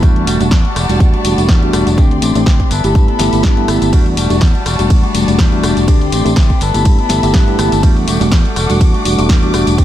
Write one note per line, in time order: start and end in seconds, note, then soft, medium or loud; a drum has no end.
0.02 0.23 E2 loud
0.02 0.25 G3 medium
0.02 0.37 G3 medium
0.02 2.68 G3 medium
0.02 0.26 A3 medium
0.02 0.37 A3 medium
0.02 0.37 D4 medium
0.02 0.27 D4 loud
0.02 0.37 F#4 medium
0.02 0.27 F#4 loud
0.02 2.68 D5 medium
0.02 1.96 F#5 medium
0.02 1.96 A5 medium
0.02 kick loud
0.02 closed hi-hat medium
0.02 tambourine soft
0.16 closed hi-hat soft
0.27 0.38 E1 loud
0.27 0.40 G3 medium
0.27 0.40 A3 medium
0.27 0.40 D4 medium
0.27 0.39 F#4 medium
0.27 open hi-hat loud
0.27 tambourine medium
0.40 0.50 E1 loud
0.40 0.47 G3 medium
0.40 0.47 A3 medium
0.40 0.50 A3 soft
0.40 0.47 D4 medium
0.40 0.51 D4 medium
0.40 0.51 F#4 medium
0.40 0.47 F#4 loud
0.40 closed hi-hat soft
0.40 tambourine soft
0.51 0.62 E2 loud
0.51 0.74 G3 medium
0.51 0.75 A3 loud
0.51 0.75 D4 loud
0.51 0.76 F#4 loud
0.51 kick loud
0.51 snare loud
0.51 closed hi-hat medium
0.51 tambourine soft
0.65 closed hi-hat soft
0.75 0.87 E1 medium
0.75 1.13 G3 medium
0.75 1.13 A3 medium
0.75 1.12 D4 medium
0.75 1.11 F#4 medium
0.75 cross-stick medium
0.75 open hi-hat medium
0.75 tambourine medium
0.89 0.98 E1 medium
0.89 1.22 G3 medium
0.89 1.22 A3 medium
0.89 1.22 D4 medium
0.89 1.22 F#4 medium
0.89 closed hi-hat medium
0.89 tambourine soft
1.00 1.11 E2 loud
1.00 kick loud
1.00 closed hi-hat medium
1.00 tambourine soft
1.13 1.48 A3 medium
1.13 1.48 D4 medium
1.13 1.48 F#4 medium
1.13 closed hi-hat soft
1.24 1.36 E1 medium
1.24 1.35 G3 medium
1.24 1.35 A3 medium
1.24 1.35 D4 medium
1.24 1.35 F#4 medium
1.24 open hi-hat loud
1.24 tambourine medium
1.37 1.47 E1 medium
1.37 1.59 G3 medium
1.37 1.59 A3 medium
1.37 1.59 D4 medium
1.37 1.59 F#4 medium
1.37 closed hi-hat medium
1.37 tambourine soft
1.48 1.70 E2 medium
1.48 1.72 G3 medium
1.48 1.72 A3 medium
1.48 1.73 D4 medium
1.48 1.73 F#4 loud
1.48 kick loud
1.48 snare loud
1.48 closed hi-hat medium
1.62 1.95 G3 medium
1.62 1.95 A3 medium
1.62 1.95 D4 medium
1.62 1.95 F#4 medium
1.62 closed hi-hat soft
1.73 1.84 E1 medium
1.73 1.86 G3 medium
1.73 1.87 A3 medium
1.73 1.86 D4 medium
1.73 1.85 F#4 medium
1.73 cross-stick medium
1.73 open hi-hat loud
1.73 tambourine medium
1.86 1.96 E1 loud
1.86 1.96 A3 soft
1.86 1.98 D4 medium
1.86 1.98 F#4 medium
1.86 closed hi-hat medium
1.86 tambourine soft
1.97 2.18 D2 loud
1.97 2.11 A3 medium
1.97 2.32 A3 medium
1.97 2.11 C4 loud
1.97 2.33 D4 medium
1.97 2.09 G4 loud
1.97 2.70 C6 medium
1.97 kick loud
1.97 closed hi-hat medium
1.97 tambourine soft
2.10 2.21 C4 soft
2.10 2.22 G4 medium
2.10 closed hi-hat soft
2.22 2.33 A1 loud
2.22 2.35 A3 medium
2.22 2.36 C4 medium
2.22 2.34 G4 medium
2.22 open hi-hat loud
2.22 tambourine medium
2.35 2.45 A1 loud
2.35 2.42 A3 medium
2.35 2.42 C4 medium
2.35 2.46 C4 medium
2.35 2.42 D4 medium
2.35 2.46 G4 medium
2.35 2.42 G4 loud
2.35 closed hi-hat soft
2.35 tambourine soft
2.46 2.58 D2 loud
2.46 2.71 A3 medium
2.46 2.71 C4 loud
2.46 2.71 G4 loud
2.46 kick loud
2.46 snare loud
2.46 closed hi-hat medium
2.60 kick medium
2.60 closed hi-hat soft
2.70 2.82 G1 medium
2.70 2.84 E3 medium
2.70 2.84 B3 medium
2.70 2.83 D4 medium
2.70 3.91 A4 medium
2.70 2.82 A4 medium
2.70 3.92 E5 medium
2.70 3.92 B5 medium
2.70 open hi-hat loud
2.70 tambourine medium
2.84 2.93 G1 medium
2.84 3.17 A3 medium
2.84 3.17 B3 medium
2.84 3.08 B3 soft
2.84 3.08 D4 medium
2.84 3.17 E4 medium
2.84 3.17 G4 medium
2.84 3.07 A4 medium
2.84 closed hi-hat soft
2.84 tambourine soft
2.95 3.06 G2 medium
2.95 kick loud
2.95 closed hi-hat medium
2.95 tambourine soft
3.08 3.43 B3 medium
3.08 3.43 D4 medium
3.08 3.44 A4 medium
3.08 closed hi-hat soft
3.19 3.31 G1 medium
3.19 3.30 A3 medium
3.19 3.30 B3 medium
3.19 3.30 E4 medium
3.19 3.30 G4 medium
3.19 snare medium
3.19 open hi-hat loud
3.19 tambourine medium
3.33 3.42 G1 medium
3.33 3.54 A3 medium
3.33 3.54 B3 medium
3.33 3.54 E4 medium
3.33 3.54 G4 medium
3.33 closed hi-hat medium
3.33 tambourine soft
3.43 3.65 G2 medium
3.43 3.67 E3 medium
3.43 3.68 B3 medium
3.43 3.68 D4 medium
3.43 3.69 A4 medium
3.43 kick loud
3.43 snare loud
3.43 closed hi-hat medium
3.57 3.90 A3 medium
3.57 3.90 B3 medium
3.57 3.90 E4 medium
3.57 3.91 G4 medium
3.57 closed hi-hat soft
3.68 3.79 G1 medium
3.68 3.82 E3 medium
3.68 3.82 B3 medium
3.68 3.81 D4 medium
3.68 3.80 A4 medium
3.68 cross-stick medium
3.68 open hi-hat loud
3.68 tambourine medium
3.81 3.91 G1 loud
3.81 3.93 B3 soft
3.81 3.92 D4 medium
3.81 3.93 A4 medium
3.81 closed hi-hat soft
3.81 tambourine soft
3.92 4.14 E2 loud
3.92 4.27 G3 medium
3.92 4.06 G3 medium
3.92 6.58 G3 medium
3.92 4.27 A3 medium
3.92 4.06 A3 medium
3.92 4.27 D4 medium
3.92 4.05 D4 loud
3.92 4.04 F#4 loud
3.92 6.58 D5 medium
3.92 5.86 F#5 medium
3.92 5.86 A5 loud
3.92 kick loud
3.92 closed hi-hat medium
3.92 ride medium
3.92 tambourine soft
4.06 4.16 A3 medium
4.06 4.17 D4 medium
4.06 4.17 F#4 medium
4.06 closed hi-hat soft
4.17 4.28 E1 loud
4.17 4.30 G3 medium
4.17 4.31 A3 medium
4.17 4.30 D4 medium
4.17 4.29 F#4 medium
4.17 open hi-hat loud
4.17 tambourine medium
4.30 4.40 E1 loud
4.30 4.37 G3 medium
4.30 4.37 A3 medium
4.30 4.40 A3 medium
4.30 4.37 D4 medium
4.30 4.41 D4 medium
4.30 4.41 F#4 medium
4.30 4.37 F#4 loud
4.30 closed hi-hat medium
4.30 tambourine soft
4.41 4.53 E2 loud
4.41 4.64 G3 medium
4.41 4.65 A3 medium
4.41 4.66 D4 medium
4.41 4.66 F#4 loud
4.41 kick loud
4.41 snare loud
4.41 closed hi-hat medium
4.41 ride medium
4.41 tambourine soft
4.55 closed hi-hat soft
4.65 4.77 E1 loud
4.65 5.03 G3 medium
4.65 5.04 A3 medium
4.65 5.03 D4 medium
4.65 5.02 F#4 medium
4.65 cross-stick medium
4.65 open hi-hat medium
4.65 tambourine medium
4.79 4.88 E1 medium
4.79 5.12 G3 medium
4.79 5.12 A3 medium
4.79 5.12 D4 medium
4.79 5.12 F#4 medium
4.79 closed hi-hat medium
4.79 tambourine soft
4.90 5.01 E2 medium
4.90 kick loud
4.90 closed hi-hat soft
4.90 ride medium
4.90 tambourine soft
5.03 5.38 A3 medium
5.03 5.38 D4 medium
5.03 5.39 F#4 medium
5.03 closed hi-hat soft
5.14 5.26 E1 medium
5.14 5.25 G3 medium
5.14 5.25 A3 medium
5.14 5.25 D4 medium
5.14 5.25 F#4 medium
5.14 open hi-hat loud
5.14 tambourine medium
5.27 5.37 E1 medium
5.27 5.49 G3 medium
5.27 5.49 A3 medium
5.27 5.49 D4 medium
5.27 5.49 F#4 medium
5.27 closed hi-hat medium
5.27 tambourine soft
5.39 5.60 E2 medium
5.39 5.62 G3 medium
5.39 5.63 A3 medium
5.39 5.63 D4 medium
5.39 5.64 F#4 loud
5.39 kick loud
5.39 snare loud
5.39 closed hi-hat soft
5.39 ride medium
5.39 tambourine soft
5.52 5.85 G3 medium
5.52 5.85 A3 medium
5.52 5.85 D4 medium
5.52 5.85 F#4 loud
5.52 closed hi-hat soft
5.63 5.75 E1 medium
5.63 5.77 G3 medium
5.63 5.77 A3 medium
5.63 5.76 D4 medium
5.63 5.75 F#4 medium
5.63 cross-stick medium
5.63 open hi-hat medium
5.63 tambourine medium
5.76 5.86 E1 loud
5.76 5.86 A3 medium
5.76 5.88 D4 medium
5.76 5.88 F#4 medium
5.76 closed hi-hat medium
5.76 tambourine soft
5.88 6.09 D2 loud
5.88 6.22 A3 medium
5.88 6.01 A3 medium
5.88 6.22 C4 medium
5.88 6.01 C4 loud
5.88 6.23 D4 medium
5.88 6.23 G4 medium
5.88 6.00 G4 loud
5.88 6.60 C6 medium
5.88 kick loud
5.88 closed hi-hat medium
5.88 ride medium
5.88 tambourine soft
6.01 6.12 C4 soft
6.01 6.12 G4 medium
6.01 closed hi-hat soft
6.12 6.23 A1 medium
6.12 6.25 A3 medium
6.12 6.26 C4 medium
6.12 6.24 G4 medium
6.12 open hi-hat loud
6.12 tambourine medium
6.25 6.35 A1 loud
6.25 6.32 A3 medium
6.25 6.32 C4 medium
6.25 6.36 C4 medium
6.25 6.32 D4 medium
6.25 6.32 G4 loud
6.25 closed hi-hat medium
6.25 tambourine soft
6.36 6.61 A3 medium
6.36 6.61 C4 medium
6.36 6.62 G4 loud
6.36 kick loud
6.36 snare loud
6.36 closed hi-hat medium
6.36 ride medium
6.50 kick medium
6.50 closed hi-hat soft
6.60 6.72 G1 loud
6.60 6.74 E3 medium
6.60 6.75 B3 medium
6.60 6.74 D4 medium
6.60 9.75 A4 medium
6.60 6.73 A4 medium
6.60 7.82 E5 medium
6.60 7.82 B5 medium
6.60 open hi-hat medium
6.60 tambourine medium
6.74 6.84 G1 medium
6.74 7.07 A3 medium
6.74 7.07 B3 medium
6.74 6.99 B3 medium
6.74 6.98 D4 soft
6.74 7.07 E4 medium
6.74 7.07 G4 medium
6.74 6.97 A4 medium
6.74 closed hi-hat medium
6.74 tambourine soft
6.85 6.97 G2 medium
6.85 kick loud
6.85 closed hi-hat medium
6.85 ride medium
6.85 tambourine soft
6.98 7.33 B3 medium
6.98 7.34 D4 medium
6.98 7.34 A4 medium
6.98 closed hi-hat soft
7.09 7.21 G1 medium
7.09 7.20 A3 medium
7.09 7.20 B3 medium
7.09 7.20 E4 medium
7.09 7.20 G4 medium
7.09 snare medium
7.09 open hi-hat loud
7.09 tambourine medium
7.23 7.32 G1 medium
7.23 7.44 A3 medium
7.23 7.44 B3 medium
7.23 7.44 E4 medium
7.23 7.44 G4 medium
7.23 closed hi-hat medium
7.23 tambourine soft
7.34 7.55 G2 medium
7.34 7.57 E3 medium
7.34 7.58 B3 loud
7.34 7.58 D4 medium
7.34 7.59 A4 loud
7.34 kick loud
7.34 snare loud
7.34 closed hi-hat medium
7.34 ride medium
7.47 7.80 A3 medium
7.47 7.80 B3 medium
7.47 7.80 E4 medium
7.47 7.81 G4 loud
7.47 closed hi-hat soft
7.58 7.70 G1 loud
7.58 7.72 E3 medium
7.58 7.72 B3 medium
7.58 7.71 D4 medium
7.58 7.70 A4 medium
7.58 cross-stick medium
7.58 open hi-hat medium
7.58 tambourine medium
7.72 7.81 G1 loud
7.72 7.83 B3 medium
7.72 7.82 D4 medium
7.72 7.83 A4 medium
7.72 closed hi-hat medium
7.72 tambourine soft
7.83 8.04 E2 loud
7.83 8.17 G3 medium
7.83 7.96 G3 medium
7.83 8.18 A3 medium
7.83 7.96 A3 loud
7.83 8.18 D4 medium
7.83 7.95 D4 loud
7.83 7.95 F#4 loud
7.83 9.76 F#5 medium
7.83 9.85 D6 loud
7.83 kick loud
7.83 closed hi-hat medium
7.83 ride medium
7.83 tambourine soft
7.96 8.06 A3 soft
7.96 8.07 D4 medium
7.96 8.07 F#4 medium
7.96 closed hi-hat soft
8.07 8.19 E1 loud
8.07 8.20 G3 medium
8.07 8.21 A3 medium
8.07 8.20 D4 medium
8.07 8.19 F#4 medium
8.07 open hi-hat loud
8.07 tambourine medium
8.20 8.30 E1 loud
8.20 8.27 G3 medium
8.20 8.27 A3 medium
8.20 8.31 A3 medium
8.20 8.27 D4 medium
8.20 8.31 D4 medium
8.20 8.32 F#4 medium
8.20 8.27 F#4 loud
8.20 closed hi-hat medium
8.20 tambourine soft
8.31 8.43 E2 loud
8.31 8.55 G3 loud
8.31 8.56 A3 medium
8.31 8.56 D4 medium
8.31 8.57 F#4 loud
8.31 kick loud
8.31 snare loud
8.31 closed hi-hat medium
8.31 ride medium
8.31 tambourine soft
8.45 closed hi-hat soft
8.56 8.67 E1 loud
8.56 8.69 G3 medium
8.56 8.70 A3 medium
8.56 8.69 D4 medium
8.56 8.68 F#4 medium
8.56 cross-stick medium
8.56 open hi-hat medium
8.56 tambourine medium
8.69 8.79 E1 medium
8.69 9.02 G3 medium
8.69 9.02 A3 medium
8.69 8.94 A3 medium
8.69 9.02 D4 medium
8.69 8.93 D4 medium
8.69 8.92 F#4 medium
8.69 9.03 F#4 loud
8.69 closed hi-hat medium
8.69 tambourine soft
8.81 8.92 E2 loud
8.81 kick loud
8.81 closed hi-hat medium
8.81 ride medium
8.81 tambourine soft
8.94 9.29 A3 medium
8.94 9.29 D4 medium
8.94 9.29 F#4 medium
8.94 closed hi-hat soft
9.05 9.16 E1 medium
9.05 9.15 G3 medium
9.05 9.15 A3 medium
9.05 9.15 D4 medium
9.05 9.15 F#4 medium
9.05 open hi-hat loud
9.05 tambourine medium
9.18 9.28 E1 medium
9.18 9.39 G3 medium
9.18 9.39 A3 medium
9.18 9.40 D4 medium
9.18 9.40 F#4 loud
9.18 closed hi-hat medium
9.18 tambourine soft
9.29 9.50 E2 medium
9.29 9.52 G3 loud
9.29 9.53 A3 medium
9.29 9.54 D4 loud
9.29 9.54 F#4 medium
9.29 kick loud
9.29 snare loud
9.29 closed hi-hat medium
9.29 ride medium
9.29 tambourine soft
9.42 9.75 G3 medium
9.42 9.75 A3 medium
9.42 9.75 D4 medium
9.42 9.76 F#4 loud
9.42 closed hi-hat soft
9.54 9.65 E1 medium
9.54 9.67 G3 medium
9.54 9.67 A3 medium
9.54 9.66 D4 medium
9.54 9.65 F#4 medium
9.54 cross-stick medium
9.54 open hi-hat medium
9.54 tambourine medium
9.66 9.76 E1 loud
9.66 9.77 A3 medium
9.66 9.78 D4 medium
9.66 9.78 F#4 medium
9.66 closed hi-hat medium
9.66 tambourine soft
9.78 9.85 D2 loud
9.78 9.85 A3 medium
9.78 9.85 C4 medium
9.78 9.85 C4 loud
9.78 9.85 G4 medium
9.78 9.85 G4 loud
9.78 9.85 C5 medium
9.78 kick loud
9.78 closed hi-hat medium
9.78 ride medium
9.78 tambourine soft